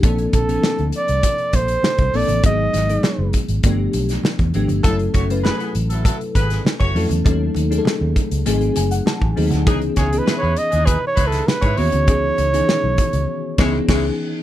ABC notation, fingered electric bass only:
X:1
M:4/4
L:1/16
Q:1/4=100
K:C#m
V:1 name="Fingered electric bass" clef=bass
^A,,,2 A,,,2 z =D,, z ^B,,, z2 A,,,2 z B,,, A,,, =A,,, | G,,,2 G,,,2 z F,,, z G,,, =G,,,2 B,,,2 z E,, ^G,,, =G,,, | F,,,2 F,,,3 z A,,,3 z G,,,2 z F,,, ^E,, =E,, | D,,2 D,,2 z D,, z C,, G,,,2 F,,,2 z A,,, D,, =D,, |
C,,2 C,,2 z E,, z D,,2 z C,,2 z G,, D,, =D,, | C,,2 C,,2 z B,,, z C,, z2 C,,2 C,,2 z2 |]